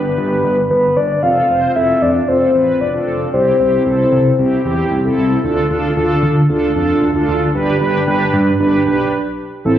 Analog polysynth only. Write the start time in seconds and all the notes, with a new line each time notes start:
Already playing: D4 G4 B4
1.23 C4 F4 A4
1.49 C4 F4 C5
1.75 C4 F4 A4
2.28 C4 F4 A4
2.54 C4 F4 B4
2.94 C4 F4 A4
3.33 C4 E4 G4
3.60 C4 E4 G4
3.86 C4 E4 A4
4.39 C4 E4 G4
4.65 C4 E4 G4
5.04 C4 E4 A4
5.44 D4 F4 A4
5.70 D4 F4 A4
5.96 D4 F4 A4
6.49 D4 F4 A4
6.75 D4 F4 A4
7.15 D4 F4 A4
7.54 D4 G4 B4
7.81 D4 G4 B4
8.07 D4 G4 B4
8.60 D4 G4 B4
8.86 D4 G4 B4
9.65 C4 E4 A4